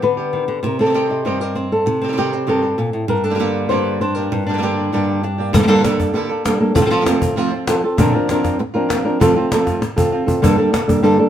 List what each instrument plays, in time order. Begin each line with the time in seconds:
Already playing: nylon-string guitar B3
0.02 nylon-string guitar D3 B4, muted nylon-string guitar stroke
0.17 nylon-string guitar G3 B3 G4
0.33 nylon-string guitar D#3
0.48 nylon-string guitar D3
0.63 nylon-string guitar C3 A#4, muted nylon-string guitar stroke
0.79 nylon-string guitar D#3 G3 C4 G4 A4
0.85 nylon-string guitar D#3 G3 C4 G4
0.90 nylon-string guitar D#3 G3 C4 G4
0.94 nylon-string guitar C3 D#3 G3 C4 G4
1.09 nylon-string guitar G3 C4 G4 D#5
1.25 nylon-string guitar G2 C3 D#3 G3 C4 G4 C5
1.40 nylon-string guitar G3 C4 G4 A#4
1.55 nylon-string guitar C4, muted nylon-string guitar stroke
1.72 nylon-string guitar A4
1.86 nylon-string guitar C3, muted nylon-string guitar stroke
2.01 nylon-string guitar D#3 G3 C4 G4
2.08 nylon-string guitar D#3 G3 C4 G4
2.12 nylon-string guitar D#3 G3 C4 G4
2.17 nylon-string guitar C3 D#3 G3 C4 G4
2.32 nylon-string guitar G3 C4 F#4 G4
2.47 nylon-string guitar G2 C3 D#3 G3 C4 G4 A4
2.62 nylon-string guitar G3 C4 G4
2.78 nylon-string guitar A#2, muted nylon-string guitar stroke
2.93 nylon-string guitar A2
3.08 nylon-string guitar G2 A#4, muted nylon-string guitar stroke
3.24 nylon-string guitar D4 A4
3.30 nylon-string guitar D3 G3 A#3 D4 G4
3.35 nylon-string guitar D3 G3 A#3 D4 G4
3.39 nylon-string guitar G2 D3 G3 A#3 D4 G4
3.69 nylon-string guitar G2 D3 G3 A#3 D4 G4 C5
4.01 nylon-string guitar D4 C5, muted nylon-string guitar stroke
4.15 nylon-string guitar A#3 D4 G4 A#4
4.19 nylon-string guitar G3
4.32 nylon-string guitar G2, muted nylon-string guitar stroke
4.47 nylon-string guitar D3 G3 A#3 D4 G4
4.53 nylon-string guitar D3 G3 A#3 D4 G4
4.58 nylon-string guitar D3 G3 A#3 D4 G4
4.62 nylon-string guitar G2 D3 G3 A#3 D4 G4
4.79 nylon-string guitar G4
4.92 nylon-string guitar G2 D3 G3 A#3 D4 G4
5.09 nylon-string guitar G4
5.23 nylon-string guitar D4, muted nylon-string guitar stroke
5.38 nylon-string guitar G3 A#3 D4 G4
5.53 nylon-string guitar G2 D3 G3 A#3 D4 A4, muted nylon-string guitar stroke, cajon bass
5.58 nylon-string guitar D3 G3 A#3 D4 A4
5.63 nylon-string guitar D3 G3 A#3 D4 A4
5.67 nylon-string guitar G2 D3 G3 A#3 D4 A4
5.72 nylon-string guitar D3 G3 A4
5.76 nylon-string guitar D3 G3 A#3 D4 A4
5.80 nylon-string guitar G2 A#3 D4 A4
5.84 nylon-string guitar D3 G3 A#3 D4 A4, cajon slap
5.99 nylon-string guitar G3 A#3 D4 A4, cajon bass, cajon slap
6.13 nylon-string guitar G2 D3 G3 A#3 D4 A4, muted nylon-string guitar stroke
6.29 nylon-string guitar G3 A#3 D4 A4
6.45 nylon-string guitar G3 A#3 D4 A4, muted nylon-string guitar stroke, cajon slap
6.60 nylon-string guitar G3 A#3 D4 A4
6.74 nylon-string guitar F3 C4 F4 A4, muted nylon-string guitar stroke, cajon bass
6.81 nylon-string guitar F3 C4 F4 A4
6.86 nylon-string guitar F3 C4 F4 A4
6.90 nylon-string guitar C3 F3 A3 C4 F4 A4
6.96 nylon-string guitar C3 F3 A3 C4 F4
7.01 nylon-string guitar C3 F3 A3 C4 F4
7.05 nylon-string guitar F2 C3 F3 A3 C4 F4 A4, cajon slap
7.21 nylon-string guitar F3 A3 C4 F4, cajon bass
7.36 nylon-string guitar F2 C3 F3 A3 C4 F4, muted nylon-string guitar stroke
7.51 nylon-string guitar F3 A3 C4 F4, cajon slap
7.67 nylon-string guitar F3 C4 F4 A4, muted nylon-string guitar stroke, cajon slap
7.84 nylon-string guitar C4 F4 A4
7.97 nylon-string guitar A#2 D3 F3 A#3 C4 D4 F4 A#4, cajon bass
8.13 nylon-string guitar F3 A#3 C4 D4 F4 A#4
8.27 nylon-string guitar D3 F3 A#3 C4 D4 F4 A#4, cajon slap
8.43 nylon-string guitar A#3 C4 F4, cajon bass, cajon slap
8.59 muted nylon-string guitar stroke
8.74 nylon-string guitar F3 A#3 C4 D4 F4 A#4
8.89 nylon-string guitar A#3 C4 F4, cajon slap
9.05 nylon-string guitar F3 C4 D4 A#4
9.20 nylon-string guitar F2 C3 F3 A3 C4 F4 A4, cajon bass
9.35 nylon-string guitar F3 A3 C4 F4 A4
9.51 nylon-string guitar F3 A3 C4 F4 A4, cajon slap
9.66 nylon-string guitar F3 A3 C4 F4, cajon bass, cajon slap
9.82 muted nylon-string guitar stroke, cajon slap
9.96 nylon-string guitar F3 A3 C4 F4 A4, cajon bass
10.12 nylon-string guitar F3 A3 C4 F4
10.26 nylon-string guitar C4 F4 A4, cajon bass
10.42 nylon-string guitar G2 D3 G3 A#3 D4 A4, cajon bass
10.57 nylon-string guitar G3 A#3 D4 A4
10.73 nylon-string guitar G3 A#3 D4 A4, muted nylon-string guitar stroke, cajon slap
10.88 nylon-string guitar G3 A#3 D4 A4, cajon bass
11.03 nylon-string guitar G2 D3 G3 A#3 D4 A4, muted nylon-string guitar stroke, cajon slap
11.19 nylon-string guitar G3 A#3 D4 A4